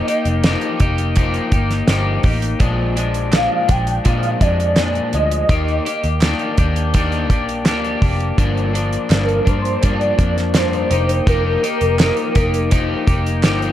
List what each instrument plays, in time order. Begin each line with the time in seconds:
Already playing: soft synth lead D#5
0.07 clean electric guitar A#3 D#4 G4, closed hi-hat
0.25 picked electric bass F1, closed hi-hat
0.44 clean electric guitar F3 A#3 D#4 G4, snare, closed hi-hat
0.61 closed hi-hat
0.80 picked electric bass F1, clean electric guitar A#3 D#4 G4, kick, closed hi-hat
0.98 closed hi-hat
1.16 clean electric guitar F3 A#3 D#4 G4, kick, closed hi-hat
1.34 closed hi-hat
1.52 picked electric bass G1, clean electric guitar A#3 D#4 G4, kick, closed hi-hat
1.70 snare, closed hi-hat
1.88 picked electric bass G1, clean electric guitar F3 A#3 D#4 G4, snare, closed hi-hat
2.23 picked electric bass A1, clean electric guitar A#3 D#4 G4, kick, open hi-hat
2.42 closed hi-hat
2.59 picked electric bass A#1, clean electric guitar A#2 F3 G#3 D4, kick, closed hi-hat
2.96 clean electric guitar F3 G#3 D4, closed hi-hat
3.14 closed hi-hat
3.32 clean electric guitar A#2 F3 G#3 D4, soft synth lead F5, snare, clap, closed hi-hat
3.68 picked electric bass A#1, clean electric guitar F3 G#3 D4, soft synth lead G5, kick, closed hi-hat
3.87 closed hi-hat
4.04 clean electric guitar A#2 F3 G#3 D4, picked electric bass A#2, soft synth lead F5, kick, closed hi-hat
4.23 closed hi-hat
4.41 picked electric bass F2, clean electric guitar F3 G#3 D4, soft synth lead D5, kick, closed hi-hat
4.60 closed hi-hat
4.76 clean electric guitar A#2 F3 G#3 D4, snare, clap, closed hi-hat
4.95 closed hi-hat
5.13 picked electric bass D2, clean electric guitar F3 G#3, soft synth lead D#5, closed hi-hat
5.32 closed hi-hat
5.49 picked electric bass D#2, clean electric guitar D#3 A#3 G4, kick, closed hi-hat
5.68 closed hi-hat
5.85 clean electric guitar A#3 G4, closed hi-hat
6.04 picked electric bass D#2, closed hi-hat
6.21 clean electric guitar D#3 A#3 D4 G4, snare, clap, closed hi-hat
6.39 closed hi-hat
6.58 picked electric bass D#2, clean electric guitar A#3 D4 G4, kick, closed hi-hat
6.76 closed hi-hat
6.94 clean electric guitar D#3 A#3 D4 G4, kick, closed hi-hat
7.12 closed hi-hat
7.30 picked electric bass A#1, clean electric guitar A#3 D4 G4, kick, closed hi-hat
7.49 closed hi-hat
7.66 picked electric bass D2, clean electric guitar A#3 D4 G4, snare, clap, closed hi-hat
7.84 closed hi-hat
8.02 picked electric bass F1, clean electric guitar A#3 D4 G4, kick, open hi-hat
8.20 closed hi-hat
8.38 picked electric bass G1, clean electric guitar G2 F3 A#3 D4, kick, closed hi-hat
8.57 closed hi-hat
8.73 clean electric guitar F3 A#3 D4, closed hi-hat
8.93 closed hi-hat
9.10 picked electric bass G1, clean electric guitar G2 F3 A#3 D4, soft synth lead A#4, snare, clap, closed hi-hat
9.29 closed hi-hat
9.45 picked electric bass G2, clean electric guitar F3 A#3 D4, soft synth lead C5, kick, closed hi-hat
9.65 closed hi-hat
9.82 clean electric guitar G2 F3 A#3 D4, picked electric bass G2, soft synth lead D5, kick, closed hi-hat
10.01 closed hi-hat
10.18 picked electric bass F2, clean electric guitar F3 A#3 D4, kick, closed hi-hat
10.37 snare, closed hi-hat
10.54 clean electric guitar G2 F3 A#3 D4, soft synth lead C5, snare, clap, closed hi-hat
10.73 closed hi-hat
10.90 picked electric bass F1, clean electric guitar A#3 D#4 G4, closed hi-hat
11.09 closed hi-hat
11.26 picked electric bass F1, clean electric guitar F3 A#3 D#4 G4, soft synth lead A#4, kick, closed hi-hat
11.63 clean electric guitar A#3 D#4 G4, closed hi-hat
11.81 picked electric bass F1, closed hi-hat
11.98 clean electric guitar F3 A#3 D#4 G4, snare, clap, closed hi-hat
12.17 closed hi-hat
12.35 picked electric bass F1, clean electric guitar A#3 D#4 G4, kick, closed hi-hat
12.54 closed hi-hat
12.71 clean electric guitar F3 A#3 D#4 G4, kick, closed hi-hat
13.07 picked electric bass F1, clean electric guitar A#3 D#4 G4, kick, closed hi-hat
13.26 closed hi-hat
13.43 picked electric bass G1, clean electric guitar F3 A#3 D#4 G4, snare, clap, closed hi-hat
13.62 closed hi-hat